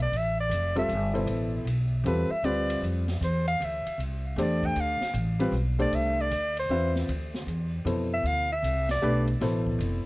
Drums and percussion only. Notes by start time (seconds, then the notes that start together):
0.13 ride
0.51 hi-hat pedal, ride
0.76 ride
0.89 hi-hat pedal, ride
1.15 ride
1.27 ride
1.67 hi-hat pedal, ride
2.06 ride
2.44 ride
2.70 ride
2.83 hi-hat pedal
3.08 snare, ride
3.22 hi-hat pedal, ride
3.48 ride
3.62 ride
3.86 ride
4.00 ride
4.38 hi-hat pedal, ride
4.63 kick, ride
4.76 ride
5.01 snare
5.14 hi-hat pedal, ride
5.40 ride
5.53 hi-hat pedal
5.79 ride
5.92 ride
6.31 hi-hat pedal, ride
6.57 ride
6.95 snare
7.09 ride
7.34 snare
7.48 hi-hat pedal, ride
7.86 hi-hat pedal, ride
8.25 ride
8.64 hi-hat pedal, ride
8.89 snare, ride
9.02 hi-hat pedal
9.27 ride
9.41 snare, ride
9.67 kick
9.80 hi-hat pedal, ride